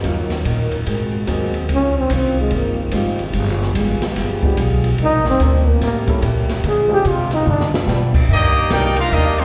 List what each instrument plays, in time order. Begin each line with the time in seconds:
Already playing: trombone section A#3
0.03 upright bass D#2, trombone section C#3 F#3 D#4, steel-string acoustic guitar D#3 C#4 F#4, upright piano F#3 A#3 C#4 D#4 F4, kick, ride
0.07 steel-string acoustic guitar A#4
0.30 snare, ride
0.45 upright bass A#2, steel-string acoustic guitar D#3 C#4 F#4 A#4, kick, hi-hat pedal, ride
0.72 ride
0.85 upright bass G#2, trombone section C3 G#3 F#4, steel-string acoustic guitar G#3 C4 F#4, kick, ride
0.89 steel-string acoustic guitar A#4
1.27 upright bass D#2, upright piano F#3 A#3 C4 D#4 G#4, steel-string acoustic guitar G#3 C4 F#4 A#4, kick, hi-hat pedal, ride
1.54 ride
1.68 upright bass C#2, steel-string acoustic guitar C#3 G3 C4, trombone section D#3 C4 F4 G4, kick, ride
1.73 trombone C#4, steel-string acoustic guitar F4
1.98 trombone C4
2.10 upright bass C2, steel-string acoustic guitar C#3 G3 C4 F4, kick, hi-hat pedal, ride
2.15 trombone C4
2.40 trombone G#3
2.51 upright bass G1, steel-string acoustic guitar C#3 G3, kick, ride
2.55 trombone A#3, steel-string acoustic guitar C4 F4
2.91 upright bass G#1, steel-string acoustic guitar C#3 G3 C4 F4, upright piano F3 G#3 C4 D#4 G4, kick, hi-hat pedal, ride
3.19 ride
3.33 upright bass G1, trombone section F3 G#3 B3 G4, steel-string acoustic guitar G3 B3 F4, kick, ride
3.37 steel-string acoustic guitar G#4
3.48 snare
3.62 snare
3.75 upright bass G#1, steel-string acoustic guitar G3 B3 F4 G#4, kick, hi-hat pedal, ride
4.01 muted upright bass stroke, snare, ride
4.16 upright bass G1, steel-string acoustic guitar G3 B3 F4, kick, snare, ride
4.21 steel-string acoustic guitar G#4
4.43 upright piano F3 G#3 B3 D4 G4, kick
4.57 upright bass B1, steel-string acoustic guitar G3 B3 F4 G#4, kick, hi-hat pedal, ride
4.84 ride
4.98 upright bass C2, steel-string acoustic guitar C3 D#3 A#3, trombone section G3 C4 D4 D#4, kick, ride
5.02 steel-string acoustic guitar D4, trombone D#4
5.13 upright bass A#1
5.25 upright bass G1, snare
5.29 trombone C4
5.40 upright bass D2, steel-string acoustic guitar C3 D#3 A#3 D4, kick, hi-hat pedal, ride
5.45 trombone C4
5.68 trombone A#3
5.81 upright bass A2, steel-string acoustic guitar A2 G3 A#3, trombone section C#3 A3 G4, trombone A#3, kick, snare, ride
5.85 steel-string acoustic guitar C#4
6.06 upright piano G3 A#3 C#4 E4 A4, kick, ride
6.22 steel-string acoustic guitar A2 G3 A#3 C#4, upright bass A#2, hi-hat pedal, ride
6.49 snare, ride
6.63 steel-string acoustic guitar D3 G#3 C4 F4, upright bass D3, trombone section D3 G#3 C4 F4, kick, ride
6.68 trombone G#4
6.88 upright piano G#3 C4 D4 F4 G#4
6.93 trombone G4
7.04 upright bass C3, steel-string acoustic guitar D3 G#3 C4 F4, kick, hi-hat pedal, ride
7.09 trombone F4
7.31 trombone D#4, snare, ride
7.46 upright bass G2, steel-string acoustic guitar G2 F3 B3, trombone section G3 B3, mid tom
7.50 trombone D4, steel-string acoustic guitar D4
7.60 snare
7.74 snare
7.86 steel-string acoustic guitar G2 F3 B3 D4, upright bass B2, upright piano G3 B3 D4 F4 G4, snare, hi-hat pedal
8.14 muted upright bass stroke, kick, crash
8.29 upright bass G2, steel-string acoustic guitar C3 D#3 A#3 D4, trombone section G3 A#3 D#4, trumpet section G4 D5 D#5, kick
8.33 trumpet section A#3
8.70 upright bass C2, steel-string acoustic guitar C3 D#3 A#3 D4, trombone section A#3 D#4 G4, trumpet section D#4 A#4 D5 G5, kick, snare, hi-hat pedal, ride
8.96 trumpet section D4 G4 A#4 F5, trombone section F4, ride
9.11 upright bass D#2, steel-string acoustic guitar C3 D#3 A#3 D4, trombone section G3 A#3 D#4, trumpet section A#3 D4 G4 D#5, kick, ride
9.38 trombone section D#3 G3 C4, trumpet section A#3 D#4 G4 C5, ride